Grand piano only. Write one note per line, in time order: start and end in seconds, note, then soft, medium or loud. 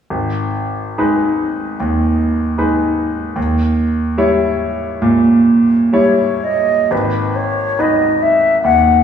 0.10 0.96 G#1 soft
0.98 1.76 G#3 soft
0.98 1.77 D#4 soft
0.98 1.77 B4 soft
1.80 2.56 D#2 soft
2.58 3.32 G#3 soft
2.58 3.33 D#4 soft
2.58 3.33 B4 soft
3.36 4.15 D#2 soft
4.18 4.98 G3 soft
4.18 4.99 E4 soft
4.18 4.99 C#5 soft
5.02 5.90 A#2 soft
5.93 6.87 G3 soft
5.93 6.88 E4 soft
5.93 6.88 C#5 soft
6.91 7.76 G#1 soft
7.79 8.60 B3 soft
7.79 8.60 D#4 soft
7.79 8.60 B4 soft
8.64 9.04 D#2 soft